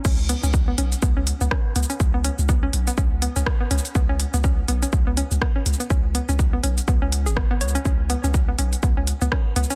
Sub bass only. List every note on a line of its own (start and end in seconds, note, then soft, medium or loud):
0.05 0.35 C#2 loud
0.43 0.72 C#2 loud
0.78 0.95 B1 medium
1.02 1.32 C#2 medium
1.41 1.47 C#2 medium
1.76 1.84 C#2 medium
2.00 2.30 C#2 loud
2.39 2.67 C#2 loud
2.73 2.90 B1 medium
2.98 3.28 C#2 medium
3.36 3.43 C#2 medium
3.71 3.80 C#2 medium
3.95 4.25 C#2 loud
4.34 4.62 C#2 loud
4.68 4.85 B1 medium
4.93 5.23 C#2 medium
5.31 5.38 C#2 medium
5.66 5.75 C#2 medium
5.90 6.20 C#2 loud
6.29 6.57 C#2 loud
6.64 6.80 B1 medium
6.88 7.28 C#2 loud
7.26 7.63 G#1 medium
7.61 7.78 C#2 medium
7.85 8.15 C#2 loud
8.24 8.52 C#2 loud
8.59 8.75 B1 medium
8.83 9.13 C#2 medium
9.22 9.28 C#2 medium
9.56 9.65 C#2 medium